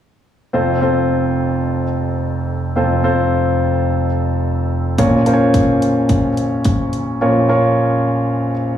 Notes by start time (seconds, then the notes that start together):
0.53 F1 F2 C4 F4 A4 C5
0.81 C4 F4 A4 C5
2.76 F1 F2 C4 F4 A4 C5
3.03 C4 F4 A4 C5
4.98 A#1 A#2 C#4 F4 A#4 C#5, kick, closed hi-hat
5.26 C#4 F4 A#4 C5, closed hi-hat
5.33 C#5
5.54 kick, closed hi-hat
5.82 closed hi-hat
6.09 kick, closed hi-hat
6.37 closed hi-hat
6.65 kick, closed hi-hat
6.93 closed hi-hat
7.21 A#1 A#2 C#4 F4 A#4 C#5
7.49 C#4 F4 A#4 C#5